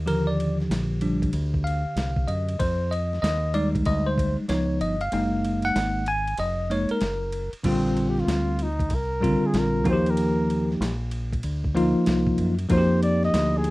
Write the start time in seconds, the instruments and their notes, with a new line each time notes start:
Already playing: fingered electric bass D#2
0.06 tine electric piano D3 F3 G4 A#4, ride
0.27 tine electric piano D5
0.40 ride
0.60 snare
0.70 fingered electric bass A#1, snare, hi-hat pedal, ride
1.01 tine electric piano F3 G3 D4, ride
1.22 kick, ride
1.33 fingered electric bass D2, ride
1.54 kick
1.64 tine electric piano F5, ride
1.85 muted fingered electric bass stroke
1.96 fingered electric bass C2, snare, hi-hat pedal, ride
2.16 kick
2.28 fingered electric bass F#2, tine electric piano D#5, ride
2.48 ride
2.59 fingered electric bass F2, tine electric piano C5, kick, ride
2.91 tine electric piano D#5, ride
3.13 snare
3.22 fingered electric bass D#2, tine electric piano D#5, snare, hi-hat pedal, ride
3.54 tine electric piano G3 G#3 D#4 D5, ride
3.75 kick, ride
3.85 fingered electric bass D2, tine electric piano D#5, kick, ride
4.07 tine electric piano C5
4.18 kick, ride
4.38 muted fingered electric bass stroke
4.48 fingered electric bass C#2, tine electric piano F3 B3 D#4 C#5, snare, hi-hat pedal, ride
4.81 fingered electric bass G1, tine electric piano D#5, ride
5.01 tine electric piano F5, ride
5.12 fingered electric bass F#1, tine electric piano G#3 A#3 D#4, ride
5.45 ride
5.62 tine electric piano F#5, snare, ride
5.75 fingered electric bass G#1, snare, hi-hat pedal, ride
6.06 tine electric piano G#5, ride
6.27 ride
6.38 fingered electric bass F1, tine electric piano D#5, ride
6.70 tine electric piano G#3 A#3 D#4 C#5, ride
6.89 tine electric piano A#4, muted fingered electric bass stroke, ride
7.01 fingered electric bass F#1, snare, hi-hat pedal, ride
7.32 ride
7.53 muted fingered electric bass stroke, ride
7.63 fingered electric bass A#1, tine electric piano D3 G3 C4 F4, flugelhorn C4, kick, crash, ride
7.97 ride
8.09 flugelhorn G4
8.18 flugelhorn F4, snare
8.27 fingered electric bass D2, snare, hi-hat pedal, ride
8.59 flugelhorn D#4, ride
8.79 kick, ride
8.90 fingered electric bass C2, kick, ride
8.95 flugelhorn A#4
9.21 tine electric piano C#3 G3 C4 F4, kick, ride
9.27 tine electric piano D3
9.46 flugelhorn G#4
9.54 fingered electric bass A#1, snare, hi-hat pedal, ride
9.58 flugelhorn A#4
9.84 fingered electric bass D#2, tine electric piano F3 A#3 D#4 F#4, kick, ride
9.90 tine electric piano G4, flugelhorn C5
10.06 flugelhorn A#4, ride
10.17 ride
10.50 ride
10.71 snare
10.80 fingered electric bass A#1, snare, hi-hat pedal, ride
11.11 ride
11.33 kick, ride
11.43 fingered electric bass D2, ride
11.64 kick
11.75 tine electric piano F3 A#3 D#4 F4, ride
11.96 muted fingered electric bass stroke
12.06 fingered electric bass C2, snare, hi-hat pedal, ride
12.27 kick
12.38 fingered electric bass F#2, ride
12.59 ride
12.69 fingered electric bass F2, tine electric piano F3 A#3 D#4 F#4, flugelhorn C5, kick, ride
12.78 tine electric piano G4
13.03 flugelhorn D5, ride
13.23 flugelhorn D#5, snare
13.33 fingered electric bass D2, snare, hi-hat pedal, ride
13.57 flugelhorn G#4
13.64 ride